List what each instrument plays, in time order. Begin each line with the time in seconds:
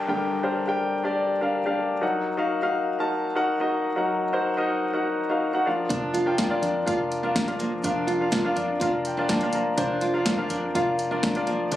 Already playing: grand piano G2 D3 D4 G4 A#4 D5 G5 A5, downlifter
0.08 grand piano G2 D3 D4 G4 A#4 G5
0.43 grand piano D4 G4 A#4 C5
0.68 grand piano D4 G4 A#4 G5
1.04 grand piano D4 G4 A#4 D5
1.41 grand piano D4 G4 A#4 F5
1.66 grand piano D4 G4 A#4 F5
2.01 grand piano F#3 D#4 F#4 A#4 F#5
2.37 grand piano D#4 F#4 A#4 F5
2.62 grand piano D#4 F#4 A#4 F5
2.99 grand piano D#4 F#4 A#4 A5
3.35 grand piano D#4 F#4 A#4 F#5
3.60 grand piano D#4 F#4 A#4 D#5
3.96 grand piano F#3 D#4 F#4 A#4 F#5
4.33 grand piano D#4 F#4 A#4 C5
4.57 grand piano D#4 F#4 A#4 D#5
4.93 grand piano D#4 F#4 A#4 F#5
5.30 grand piano D#4 F#4 A#4 F5
5.54 grand piano D#4 F#4 A#4 F#5
5.66 grand piano F3 D4 F4 A#4 F5
5.89 fingered electric bass F1, steel-string acoustic guitar D4, kick, closed hi-hat
6.14 steel-string acoustic guitar F4, closed hi-hat
6.26 grand piano D4 F4 A#4 G5
6.38 steel-string acoustic guitar F4, kick, snare, closed hi-hat
6.50 grand piano D4 F4 A#4 D5
6.62 fingered electric bass F2, steel-string acoustic guitar D4, closed hi-hat
6.86 fingered electric bass F1, grand piano D4 F4 A#4 F5, steel-string acoustic guitar F4, kick, closed hi-hat
7.12 closed hi-hat
7.23 grand piano D4 F4 A#4 F5, steel-string acoustic guitar D4
7.36 kick, snare, closed hi-hat
7.48 grand piano D4 F4 A#4 F5, closed hi-hat
7.59 grand piano F3, steel-string acoustic guitar A#3, closed hi-hat
7.84 fingered electric bass F1, steel-string acoustic guitar D4, grand piano D4 F4 A#4 F5, kick, closed hi-hat
8.07 steel-string acoustic guitar F4, closed hi-hat
8.20 grand piano D4 F4 A#4 F5
8.32 steel-string acoustic guitar F4, kick, snare, closed hi-hat
8.45 grand piano D4 F4 A#4 F5
8.56 fingered electric bass F2, steel-string acoustic guitar D4, grand piano D5, closed hi-hat
8.80 fingered electric bass F1, grand piano D4 F4 A#4 F5, steel-string acoustic guitar F4, kick, closed hi-hat
9.05 grand piano G5, closed hi-hat
9.17 steel-string acoustic guitar D4, grand piano D4 F4 A#4 D5
9.29 steel-string acoustic guitar A#3, grand piano A5, kick, snare, closed hi-hat
9.41 grand piano D4 F4 A#4 F5, closed hi-hat
9.53 grand piano F3 A#5, closed hi-hat
9.77 fingered electric bass F1, grand piano D4 F4 A#4 C5, steel-string acoustic guitar D4, kick, closed hi-hat
10.01 steel-string acoustic guitar F4, closed hi-hat
10.14 grand piano D4 F4 A#4 F5
10.26 steel-string acoustic guitar F4, kick, snare, closed hi-hat
10.37 grand piano D4 F4 A#4 F5
10.50 fingered electric bass F2, steel-string acoustic guitar D4, closed hi-hat
10.75 fingered electric bass F1, grand piano D4 F4 A#4 F5, steel-string acoustic guitar F4, kick, closed hi-hat
10.99 closed hi-hat
11.11 steel-string acoustic guitar D4, grand piano D4 F4 A#4 D5
11.23 kick, snare, closed hi-hat
11.35 grand piano D4 F4 A#4 D5, closed hi-hat
11.47 grand piano F3, steel-string acoustic guitar A#3, closed hi-hat
11.71 fingered electric bass F1, steel-string acoustic guitar D4, grand piano D4 F4, kick, closed hi-hat